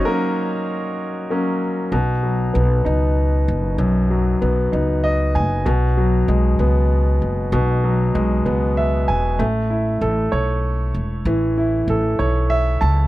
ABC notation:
X:1
M:6/8
L:1/8
Q:3/8=64
K:B
V:1 name="Grand piano"
A4 z2 | z6 | z4 d g | z6 |
z4 e g | z6 | z4 e =a |]
V:2 name="Grand piano"
[F,A,C] z3 [F,A,C] z | B,, F, B, D3 | F,, F, B, D3 | B,, F, G, B,3 |
B,, F, G, B,3 | =A, E =A c3 | E, E =A c3 |]
V:3 name="Upright bass" clef=bass
z6 | B,,,2 B,,, C,,2 F,,, | B,,,2 B,,, C,,2 F,,, | B,,,2 B,,, C,,2 F,,, |
B,,,2 B,,, C,,2 E,,, | =A,,,2 A,,, B,,,2 E,,, | =A,,,2 A,,, B,,,2 C,, |]